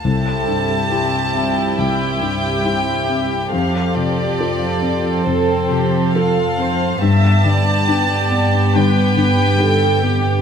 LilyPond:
<<
  \new Staff \with { instrumentName = "Violin section" } { \time 4/4 \key c \major \tempo 4 = 69 a''2 g''2 | f''8 d''4. c''4 f''4 | a''2 g''2 | }
  \new Staff \with { instrumentName = "Viola section" } { \time 4/4 \key c \major a'4 g'8 f8 e'8 g'8 g'4~ | g'2 a'8 g'8 a'8 c''8 | e''8 d''4. b'4 a'8 g'8 | }
  \new Staff \with { instrumentName = "Harp" } { \time 4/4 \key c \major c16 c'16 e'16 g'16 c''16 e''16 g'16 e'16 g16 c'16 e'16 g'16 c''16 e''16 g'16 e'16 | f,16 c'16 f'16 a'16 c''16 f''16 a'16 f'16 c16 c'16 f'16 a'16 c''16 f''16 a'16 f'16 | g,16 b16 d'16 g'16 b'16 d''16 g'16 d'16 d16 b16 d'16 g'16 b'16 d''16 g'16 d'16 | }
  \new Staff \with { instrumentName = "Violin section" } { \time 4/4 \key c \major <e' g'>1 | <c' a'>1 | <b g'>1 | }
  \new Staff \with { instrumentName = "Felt piano" } { \time 4/4 \key c \major c,8 g,8 <e' g'>8 c'8 c,8 g,8 <e' g'>8 c'8 | f,8 c8 <f' a'>8 c'8 f,8 c8 <f' a'>8 c'8 | g,8 d8 <d' g'>8 b8 g,8 d8 <d' g'>8 b8 | }
  \new Staff \with { instrumentName = "Cello section" } { \clef bass \time 4/4 \key c \major c,1 | f,1 | g,1 | }
>>